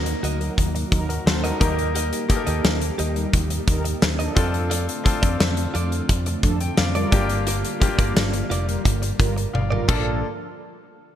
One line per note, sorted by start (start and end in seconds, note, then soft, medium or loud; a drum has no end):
0.00 0.13 D#2 medium
0.00 1.59 F#3 medium
0.00 1.60 A#3 medium
0.00 4.33 A#3 medium
0.00 1.60 D#4 medium
0.00 4.33 D#4 medium
0.00 1.10 F#4 medium
0.00 1.59 F#4 medium
0.00 1.09 A#4 medium
0.06 muted clean electric guitar stroke soft
0.06 closed hi-hat medium
0.23 0.48 D2 medium
0.23 0.41 F#4 medium
0.23 0.40 A#4 medium
0.23 0.39 D#5 medium
0.23 closed hi-hat medium
0.40 0.54 F#3 medium
0.40 0.54 D#4 medium
0.40 0.54 A#4 medium
0.40 muted clean electric guitar stroke soft
0.40 closed hi-hat soft
0.58 0.82 D#2 medium
0.58 muted clean electric guitar stroke soft
0.58 kick medium
0.58 closed hi-hat medium
0.75 muted clean electric guitar stroke medium
0.75 closed hi-hat medium
0.91 1.17 D#2 loud
0.91 1.06 F#3 loud
0.91 1.06 D#4 medium
0.91 1.06 A#4 loud
0.91 kick medium
0.91 closed hi-hat medium
1.09 1.26 F#4 medium
1.09 1.25 A#4 medium
1.09 muted clean electric guitar stroke soft
1.09 closed hi-hat medium
1.26 1.51 D#2 medium
1.26 1.43 A4 medium
1.26 1.43 C5 medium
1.26 muted clean electric guitar stroke soft
1.26 snare loud
1.43 1.73 G3 medium
1.43 1.73 D#4 medium
1.43 1.77 F#4 medium
1.43 1.60 F#4 medium
1.43 1.73 A#4 loud
1.43 1.59 A#4 medium
1.43 1.60 A#4 medium
1.43 1.61 D#5 medium
1.43 closed hi-hat medium
1.60 2.11 D#2 loud
1.60 4.34 G3 medium
1.60 2.15 A#3 medium
1.60 2.16 D#4 medium
1.60 2.16 G4 medium
1.60 1.74 G4 medium
1.60 4.34 G4 medium
1.60 2.16 A#4 medium
1.60 1.75 A#4 medium
1.60 1.75 D#5 medium
1.60 kick loud
1.60 closed hi-hat medium
1.78 muted clean electric guitar stroke medium
1.78 closed hi-hat soft
1.95 2.13 G4 medium
1.95 2.12 A#4 medium
1.95 2.11 D#5 medium
1.95 closed hi-hat medium
2.12 muted clean electric guitar stroke soft
2.12 closed hi-hat medium
2.29 3.34 A#3 medium
2.29 3.34 D#4 medium
2.29 3.35 G4 medium
2.29 2.36 A4 medium
2.29 muted clean electric guitar stroke soft
2.29 kick medium
2.29 closed hi-hat medium
2.36 3.38 A#4 medium
2.46 2.60 D#2 medium
2.46 2.61 G4 medium
2.46 2.61 A#4 medium
2.46 2.61 D#5 medium
2.46 closed hi-hat medium
2.64 2.89 D#2 loud
2.64 muted clean electric guitar stroke soft
2.64 snare loud
2.81 muted clean electric guitar stroke soft
2.81 closed hi-hat medium
2.98 3.24 D#2 medium
2.98 3.16 G4 medium
2.98 3.16 A#4 medium
2.98 3.15 D#5 loud
2.98 closed hi-hat medium
3.16 3.30 G3 medium
3.16 3.30 D#4 medium
3.16 3.30 A#4 medium
3.16 muted clean electric guitar stroke medium
3.16 closed hi-hat soft
3.33 3.58 D#2 loud
3.33 muted clean electric guitar stroke soft
3.33 kick medium
3.33 closed hi-hat medium
3.50 muted clean electric guitar stroke soft
3.50 closed hi-hat medium
3.67 3.92 D#2 loud
3.67 3.82 G3 loud
3.67 3.82 D#4 loud
3.67 3.82 A#4 loud
3.67 kick medium
3.67 closed hi-hat medium
3.85 muted clean electric guitar stroke soft
3.85 closed hi-hat medium
4.02 4.27 D#2 medium
4.02 muted clean electric guitar stroke soft
4.02 snare loud
4.19 4.48 F3 medium
4.19 4.49 D4 loud
4.19 4.35 G4 medium
4.19 4.49 A4 loud
4.19 4.36 A#4 medium
4.19 4.37 D#5 medium
4.19 closed hi-hat medium
4.35 4.86 F2 loud
4.35 9.84 D3 medium
4.35 7.10 A3 medium
4.35 4.91 C4 medium
4.35 7.10 C4 medium
4.35 4.91 D4 medium
4.35 4.50 F4 medium
4.35 4.92 F4 medium
4.35 9.84 F4 medium
4.35 4.92 A4 loud
4.35 4.51 A4 medium
4.35 4.51 D5 medium
4.35 kick loud
4.35 closed hi-hat medium
4.53 muted clean electric guitar stroke soft
4.53 closed hi-hat soft
4.70 4.88 F4 medium
4.70 4.88 A4 medium
4.70 4.86 D5 medium
4.70 closed hi-hat medium
4.87 muted clean electric guitar stroke soft
4.87 closed hi-hat medium
5.04 6.10 C4 medium
5.04 6.10 D4 medium
5.04 6.10 F4 medium
5.04 6.10 A4 medium
5.04 muted clean electric guitar stroke soft
5.04 kick medium
5.04 closed hi-hat medium
5.22 5.35 F2 medium
5.22 5.37 F4 medium
5.22 5.37 A4 medium
5.22 5.36 D5 medium
5.22 kick medium
5.22 closed hi-hat medium
5.40 5.65 F2 medium
5.40 muted clean electric guitar stroke soft
5.40 snare loud
5.57 muted clean electric guitar stroke soft
5.57 closed hi-hat medium
5.74 6.00 F2 medium
5.74 5.92 F4 medium
5.74 5.92 A4 medium
5.74 5.90 D5 medium
5.74 closed hi-hat medium
5.91 6.05 F3 medium
5.91 6.06 D4 medium
5.91 6.05 A4 medium
5.91 muted clean electric guitar stroke soft
5.91 closed hi-hat soft
6.09 6.34 F2 loud
6.09 muted clean electric guitar stroke soft
6.09 kick medium
6.09 closed hi-hat medium
6.26 muted clean electric guitar stroke medium
6.26 closed hi-hat medium
6.43 6.68 F2 loud
6.43 6.58 F3 loud
6.43 6.58 D4 loud
6.43 6.58 A4 loud
6.43 kick medium
6.43 closed hi-hat medium
6.60 6.77 G5 medium
6.60 muted clean electric guitar stroke soft
6.60 closed hi-hat medium
6.77 7.03 F2 medium
6.77 6.94 D5 medium
6.77 6.94 F5 medium
6.77 muted clean electric guitar stroke medium
6.77 snare loud
6.95 7.25 G3 loud
6.95 7.25 F4 loud
6.95 7.11 F4 medium
6.95 7.13 A4 medium
6.95 7.25 A#4 loud
6.95 7.13 D5 medium
6.95 7.28 D5 medium
6.95 closed hi-hat medium
7.12 7.62 G1 loud
7.12 9.86 G3 medium
7.12 7.67 A#3 medium
7.12 9.86 A#3 medium
7.12 7.67 D4 medium
7.12 7.68 F4 medium
7.12 7.26 F4 medium
7.12 7.68 G4 loud
7.12 7.27 A#4 medium
7.12 7.27 D5 medium
7.12 kick loud
7.12 closed hi-hat medium
7.29 muted clean electric guitar stroke medium
7.29 closed hi-hat soft
7.47 7.64 F4 medium
7.47 7.64 A#4 medium
7.47 7.63 D5 medium
7.47 closed hi-hat medium
7.64 muted clean electric guitar stroke soft
7.64 closed hi-hat medium
7.80 8.86 A#3 medium
7.80 8.86 D4 medium
7.80 8.86 F4 medium
7.80 8.87 G4 loud
7.80 muted clean electric guitar stroke soft
7.80 kick medium
7.80 closed hi-hat medium
7.98 8.11 G1 medium
7.98 8.13 F4 medium
7.98 8.13 A#4 medium
7.98 8.12 D5 medium
7.98 kick medium
7.98 closed hi-hat medium
8.16 8.41 G1 medium
8.16 muted clean electric guitar stroke soft
8.16 snare loud
8.16 tambourine medium
8.33 muted clean electric guitar stroke medium
8.33 closed hi-hat medium
8.50 8.75 F1 medium
8.50 8.68 F4 medium
8.50 8.68 A#4 medium
8.50 8.66 D5 loud
8.50 closed hi-hat medium
8.67 8.82 G3 medium
8.67 8.81 F4 medium
8.67 8.81 A#4 medium
8.67 muted clean electric guitar stroke soft
8.67 closed hi-hat soft
8.85 9.10 G1 loud
8.85 muted clean electric guitar stroke soft
8.85 kick medium
8.85 closed hi-hat medium
9.02 muted clean electric guitar stroke soft
9.02 closed hi-hat medium
9.19 9.44 G1 loud
9.19 9.34 G3 loud
9.19 9.34 F4 loud
9.19 9.34 A#4 loud
9.19 kick medium
9.19 closed hi-hat medium
9.37 muted clean electric guitar stroke soft
9.37 closed hi-hat medium
9.53 9.79 G1 medium
9.53 9.87 D5 medium
9.53 9.86 F5 medium
9.53 muted clean electric guitar stroke soft
9.53 high tom medium
9.71 9.86 G3 medium
9.71 9.86 F4 medium
9.71 9.87 F4 medium
9.71 9.86 A#4 loud
9.71 9.89 A#4 medium
9.71 9.88 D5 medium
9.71 mid tom medium
9.88 10.21 A#1 loud
9.88 10.21 D3 medium
9.88 10.21 F3 medium
9.88 10.20 A#3 medium
9.88 10.21 A#3 medium
9.88 10.20 D4 medium
9.88 10.21 D4 medium
9.88 10.20 F4 medium
9.88 10.09 F4 medium
9.88 10.21 F4 medium
9.88 10.20 A4 medium
9.88 10.21 A4 loud
9.88 10.10 A4 medium
9.88 10.21 A4 medium
9.88 10.10 D5 medium
9.88 kick loud
9.88 crash medium